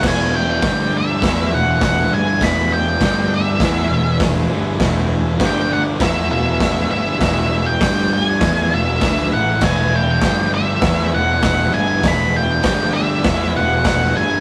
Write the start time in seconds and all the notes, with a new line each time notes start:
0.02 E1 E2 B2 E3 G#4 B4 E5, kick, snare, crash
0.07 G#5
0.36 G5
0.59 G2 D3 D4 G4 D5, kick, snare, open hi-hat
0.63 G1 G3
0.97 E5
1.21 E2 E3 B3 E4 G#4 B4, kick, snare, open hi-hat
1.52 E1 E2 B2 E3 F#5
1.81 F#5, kick, snare, open hi-hat
2.11 G1 G2 D3 G3 G#5
2.41 E1 E2 B2 E3 B5, kick, snare, open hi-hat
2.73 G5
3.01 G1 G2 D3 G3 D4 G4 D5, kick, snare, open hi-hat
3.34 E5
3.59 E2 E3 B3 E4 G#4 B4, kick, snare, open hi-hat
3.89 E1 E2 B2 E3
4.20 kick, snare, open hi-hat
4.49 G1 G2 D3 G3
4.80 E1 E2 B2 E3, kick, snare, open hi-hat
5.39 G1 G2 D3 G3 D4 G4 D5, kick, snare, open hi-hat
5.46 G5
5.73 F#5
5.99 E2 E3 B3 E4 G#4 B4 E5, kick, snare, open hi-hat
6.29 E1 E2 B2 E3 E5
6.60 kick, snare, open hi-hat
6.89 G1 G2 D3 G3 E5
7.19 E1 E2 B2 E3 E5, kick, snare, open hi-hat
7.66 G5
7.80 G1 G2 D3 G3 D4 D5, kick, snare, open hi-hat
8.13 G5
8.24 G#5
8.41 E2 E3 B3 E4 G#4 B4, kick, snare, open hi-hat
8.71 E1 E2 B2 E3 E5
9.01 D2 D3 A3 D4 E5, kick, snare, open hi-hat
9.32 A1 A2 E3 A3 F#5
9.61 E1 E2 B2 E3 G#5, kick, snare, crash
9.96 G5
10.21 G1 G2 D3 G3 D4 G4 D5, kick, snare, open hi-hat
10.55 E5
10.81 E2 E3 B3 E4 G#4, kick, snare, open hi-hat
10.85 B4
11.12 E1 E2 B2 E3 F#5
11.42 F#5, kick, snare, open hi-hat
11.72 G1 G2 D3 G3 G#5
12.01 E1 E2 B2 E3, kick, snare, open hi-hat
12.08 B5
12.36 G5
12.63 G1 G2 D3 G3 D5, kick, snare, open hi-hat
12.67 D4 G4
12.94 E5
13.23 E2 E3 B3 E4, kick, snare, open hi-hat
13.28 G#4 B4
13.55 E1 E2 B2 E3 F#5
13.84 F#5, kick, snare, open hi-hat
14.15 G1 G2 D3 G3 G#5